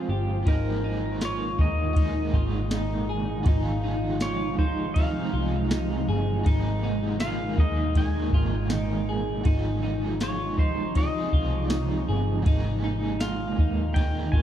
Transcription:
Already playing: F3 G#3 C4 F4 G#4 C5
0.09 G1 G4
0.43 G#1 G#2 G#3 D#4, kick
0.47 A#2 D#3 G#3 A#3 D#4 A#4, ride
0.52 G#4
0.84 D#4 G#5
1.21 F4 C#5, snare, ride, tambourine
1.59 D#2 D#4 D#5, kick
1.93 G#2 G#3 A#3 D#4, kick, ride
1.98 D#4 G#4 A#4
2.33 G#1 F4, kick
2.71 D#4, snare, ride, tambourine
3.09 G#4
3.43 G#1 G#2 C3 F3 D#4, kick, ride
3.49 D#4 F4 G#4
3.63 F5
3.67 G#5
3.84 D#4
4.20 F4 C#5, snare, ride, tambourine
4.59 D#4 C5, kick
4.94 F3 C4 D#4 F5, kick, ride
4.99 D#4 F4 G#4
5.34 C2 F4
5.71 D#4, snare, ride, tambourine
6.09 G1 G#4
6.44 G#1 G#2 A#2 D#3 G#3 A#3 D#4 A#4, kick, ride
6.49 G#4
6.84 D#4
7.20 A#3 D#4 F4 F5, snare, ride, tambourine
7.24 G#4 A#4
7.58 D#2 D#4 D#5, kick
7.93 G#2 G#3 A#3 D#4, kick, ride
7.97 D#4 A#4 G#5
8.02 G#4
8.33 G#1 F4, kick
8.68 D#4 G5, snare, ride, tambourine
9.09 G#4
9.44 G#1 G#2 C3 F3 D#4, kick, ride
9.49 D#4 F4 G#4
9.83 D#4
10.20 F4 C#5, snare, ride, tambourine
10.39 C6
10.58 D#4 C5, kick
10.95 F3 C4 D#4 D#5, kick, ride
10.99 D#4 F4 G#4
11.33 C2 F4, kick
11.70 D#4 C#5, snare, ride, tambourine
12.09 G1 G#4
12.42 G#1 G#2 G#3 A#3 D#4, kick, ride
12.47 A#2 D#3 D#4 A#4
12.51 G#4
12.84 D#4
13.20 F4 F5, snare, ride, tambourine
13.59 D#2 D#4, kick
13.93 G#2 G#3 D#4 G5, kick, ride
13.98 A#3 D#4 A#4
14.02 G#4
14.32 G#1 F4 G#5, kick
14.36 C#6

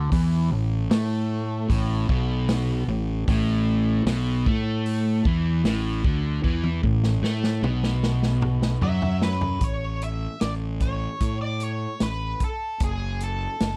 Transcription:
Already playing: D3
0.12 E2 E3, kick, open hi-hat
0.52 A1 A2
0.91 A2 A3, snare, open hi-hat
1.70 A1 A2, kick, open hi-hat
2.09 B1 B2, kick
2.49 snare, open hi-hat
2.88 A1 A2
3.28 A1 A2, kick, open hi-hat
4.06 B1 B2, snare, open hi-hat
4.46 A2 A3, kick
4.86 open hi-hat
5.25 E2 E3, kick
5.64 A1 A2, snare, open hi-hat
6.04 D2 D3, kick
6.44 E2 E3, kick
6.64 high tom
6.83 A1 A2, kick
7.04 snare
7.22 A2 A3, snare
7.44 snare
7.62 B1 B2, mid tom
7.83 snare
8.03 snare
8.23 snare
8.42 mid tom
8.62 snare
8.81 F#2 F#3 E5, floor tom
9.02 floor tom
9.22 B4, snare
9.41 floor tom
9.61 A1 C#5, kick, closed hi-hat
10.01 E5, closed hi-hat
10.41 A1 D5, snare, closed hi-hat
10.80 C#5, kick, closed hi-hat
11.20 A2, kick, closed hi-hat
11.41 D5
11.60 C#5, closed hi-hat
12.00 A1 B4, snare, closed hi-hat
12.40 kick, closed hi-hat
12.44 A4
12.80 F#1 G#4, kick, closed hi-hat
13.20 A4, closed hi-hat
13.60 F#1, snare, closed hi-hat

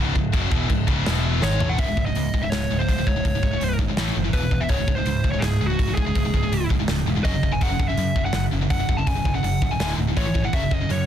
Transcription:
Already playing: C#1 C#2 G#2 C#3
0.15 C#1 C#2 G#2, kick
0.32 F#1 F#2 C#3 F#3, kick, china
0.51 E1 E2 B2 E3, kick
0.69 C#1 C#2 G#2, kick, china
0.87 C#1 C#2 G#2 C#3, kick
1.05 E1 E2 B2 E3, snare, china
1.41 G#1 G#2 D#3 G#3 C#5, snare
1.59 A1 A2 E3 A3, floor tom
1.69 F#5
1.78 C#1 C#2 G#2 C#3 E5, kick, open hi-hat
1.88 C#2 G#2
1.97 C#1 C#2 G#2, kick
2.06 C#2 G#2 D#5
2.15 C#2 G#2, open hi-hat
2.34 C#1 C#2 G#2, kick
2.42 C#2 G#2 E5
2.50 C#1 C#2 G#2 C#5, snare, open hi-hat
2.71 C#1 C#2 G#2
2.79 C#2 G#2 C5
2.88 C#1 C#2 G#2, kick, open hi-hat
2.98 C#2 G#2
3.07 C#1 C#2 G#2 C#5, kick
3.16 C#2 G#2
3.25 C#1 C#2 G#2, kick, open hi-hat
3.35 C#2 G#2
3.43 C#1 C#2 G#2, kick
3.53 C#2 G#2
3.61 C#1 C#2 G#2, open hi-hat
3.79 G#1 C#2 G#2, kick
3.89 C#2 G#2
3.97 A1 A2 E3 A3, snare, open hi-hat
4.16 F#1 A2 E3
4.24 A2 E3
4.33 E1 E2 B2 E3 B4, kick, open hi-hat
4.43 E2 B2
4.51 E1 E2 B2, kick
4.60 E2 B2 E5
4.69 C#1 C#2 G#2 C#3 C#5, kick, open hi-hat
4.79 C#2 G#2
4.88 C#1 C#2 G#2, kick
4.95 C#2 G#2 C5
5.06 C#2 G#2, open hi-hat
5.24 C#1 C#2 G#2, kick
5.32 C#2 G#2 C#5
5.40 C#1 C#2 G#2 G#4, snare, open hi-hat
5.61 C#1 C#2 G#2
5.67 C#2 G#2 F#4
5.79 C#1 C#2 G#2, kick, open hi-hat
5.88 C#2 G#2
5.95 C#1 C#2 G#2 G#4, kick
6.06 C#2 G#2
6.15 C#1 C#2 G#2, kick, open hi-hat
6.25 C#2 G#2
6.34 C#1 C#2 G#2, kick
6.43 C#2 G#2
6.52 C#1 C#2 G#2, open hi-hat
6.70 C#1 C#2 G#2, kick
6.80 C#2 G#2
6.88 C#1 C#2 G#2, snare, open hi-hat
7.06 E1 C#2 G#2
7.16 C#2 G#2
7.24 F#1 F#2 C#3 F#3 D#5, kick, open hi-hat
7.34 F#2 C#3
7.43 F#1 F#2 C#3, kick
7.52 F#2 C#3 G#5
7.61 F#1 F#2 C#3 F#3 F#5, kick, open hi-hat
7.71 F#2 C#3
7.80 F#1 F#2 C#3, kick
7.88 F#2 C#3 E5
7.97 F#2 C#3, open hi-hat
8.16 F#1 F#2 C#3, kick
8.25 F#2 C#3 F#5
8.33 F#1 F#2 C#3, snare, open hi-hat
8.51 F#1 F#2 C#3
8.61 F#2 C#3
8.70 F#1 F#2 C#3 F#5, kick, open hi-hat
8.79 F#2 C#3
8.89 F#1 F#2 C#3, kick
8.97 F#2 C#3 A5
9.06 F#1 F#2 C#3 G#5, kick, open hi-hat
9.15 F#2 C#3
9.25 F#1 F#2 C#3, kick
9.34 F#2 C#3 F#5
9.43 F#1 F#2 C#3, open hi-hat
9.62 C#1 F#2 C#3, kick
9.71 F#2 C#3 G#5
9.80 D1 D2 A2 D3, snare, open hi-hat
9.98 D1 D2 A2
10.08 D2 A2
10.17 A1 A2 E3 A3 C#5, kick, open hi-hat
10.26 A2 E3
10.34 G#1 A2 E3, kick
10.44 A2 E3 F#5
10.53 F#1 F#2 C#3 F#3 E5, kick, open hi-hat
10.63 F#2 C#3
10.71 F#1 F#2 C#3 D#5, kick
10.81 F#2 C#3
10.89 F#2 C#3 C#5, open hi-hat

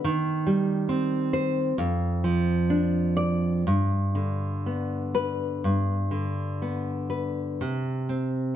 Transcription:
0.04 D#3
0.47 G3
0.89 C4
1.33 C5
1.78 F2
2.24 F3
2.70 D4
3.17 D5
3.67 G2
4.15 D3
4.66 B3
5.15 B4
5.64 G2
6.11 D3
6.62 B3
7.10 B4
7.61 C3
8.09 C4

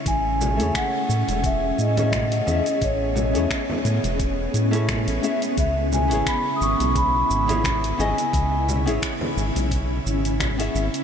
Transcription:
Already playing: C#4
0.06 A1 A3 G#4 G#5, kick, open hi-hat, shaker
0.41 high conga, shaker
0.57 E2 A3 C#4 E4, open hi-hat, shaker
0.61 G#4 C#5
0.75 F#5, finger snap, kick, open hi-hat, shaker
1.09 A2, shaker
1.28 E1, open hi-hat, high conga, shaker
1.44 E5, kick, open hi-hat, shaker
1.78 A2 D#5, shaker
1.96 A3 C#4 E4 G#4 C#5, open hi-hat, low conga, shaker
2.12 finger snap, kick, open hi-hat, high conga, shaker
2.32 open hi-hat
2.46 E2 A3 C#4 E4 G#4 E5, low conga, shaker
2.66 open hi-hat, shaker
2.82 A1 B3 C#5, kick, open hi-hat, shaker
3.15 high conga, shaker
3.34 E2 A3 C#4 E4 G#4 C#5, open hi-hat, shaker
3.51 finger snap, kick, open hi-hat, shaker
3.70 low conga
3.85 A2, open hi-hat, shaker
4.04 E1, open hi-hat, high conga, shaker
4.20 kick, open hi-hat, shaker
4.54 A2, open hi-hat, shaker
4.71 A3 C#4 E4 G#4 C#5, open hi-hat, shaker
4.88 finger snap, kick, open hi-hat, high conga, shaker
5.07 A1, open hi-hat
5.21 A3 C#4 E4 G#4 E5, shaker
5.42 open hi-hat, shaker
5.57 C#2 C#3 E4 E5, kick, open hi-hat, shaker
5.92 G#5, high conga, shaker
6.08 G#1 B3 C#4 E4, open hi-hat, shaker
6.13 G#4 C#5
6.26 B5, finger snap, kick, open hi-hat, shaker
6.56 D#6
6.61 G#1 C#6, shaker
6.80 B1, open hi-hat, high conga, shaker
6.96 B5, kick, open hi-hat, shaker
7.30 G#1, shaker
7.47 B3 C#4 E4 G#4 C#5, open hi-hat, low conga, shaker
7.64 finger snap, kick, open hi-hat, high conga, shaker
7.84 open hi-hat
7.98 G#1 B3 C#4 E4 G#4 D#5 G#5, low conga, shaker
8.18 open hi-hat, shaker
8.33 C#2 C#4, kick, open hi-hat, shaker
8.69 high conga, shaker
8.86 G#1 B3 C#4 E4 G#4 C#5, open hi-hat, shaker
9.02 finger snap, kick, open hi-hat, shaker
9.21 low conga
9.37 G#1, shaker
9.55 B1, open hi-hat, high conga, shaker
9.71 kick, open hi-hat, shaker
10.06 G#1, shaker
10.25 open hi-hat, shaker
10.40 finger snap, kick, open hi-hat, high conga, shaker
10.58 B3 C#4 E4 G#4 E5, open hi-hat
10.75 G#1, shaker
10.94 open hi-hat, shaker

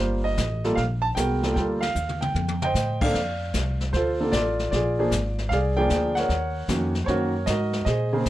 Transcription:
Already playing: G1 G3 A#3 F4 C5
0.24 D#5
0.38 A1, kick, snare, hi-hat pedal
0.64 G3 A#3 F4 A4, snare
0.75 A#1 F5, brush sweep, kick, snare
1.02 A5
1.15 C2 G#3 B3 F#4 A#4 G5, kick, snare, hi-hat pedal
1.43 G3 A#3 F4 A4, snare
1.54 D2 G3 A#3 F4 A4 G5, brush sweep, kick, snare
1.81 F5, snare, ride
1.95 D#2, hi-hat pedal
2.09 mid tom
2.21 G5, mid tom
2.34 F2, high tom
2.48 high tom
2.62 C5 D#5 G5, mid tom
2.74 A2, snare, hi-hat pedal
3.01 D3 A#3 C4 A4 D5 F5, kick, crash
3.14 F2, brush sweep, kick, snare
3.54 C2, kick, snare, hi-hat pedal
3.80 snare
3.93 D2 F4 A4 C5, brush sweep, kick, snare
4.21 D3 A#3 C4 A4
4.32 A1 F4 A4 D5, kick, snare, hi-hat pedal
4.59 snare
4.71 A#1 F4 G#4 D5, brush sweep, kick, snare
4.99 F3 A#3 D4 G#4
5.11 G#1, kick, snare, hi-hat pedal
5.38 snare
5.49 C2 G#4 F5, brush sweep, kick, snare
5.53 D5
5.76 F3 A#3 D4 G#4 G5
5.80 D5
5.90 D2, kick, snare, hi-hat pedal
6.15 A#4 C#5 F#5, snare
6.29 D#2, brush sweep, kick, snare
6.68 F2 D#3 A#3 C#4 F#4, kick, snare, hi-hat pedal
6.95 snare
7.04 F#2 C5 C#5, brush sweep, kick, snare
7.08 D#3 A#3 C#4 F#4 A#4
7.46 G#2 F#4 A#4 D#5, kick, snare, hi-hat pedal
7.73 snare
7.85 A#2 G#4 C5 D#5, brush sweep, kick, snare
8.13 C#3 A#3 C4 G#4
8.26 F2, kick, snare, hi-hat pedal

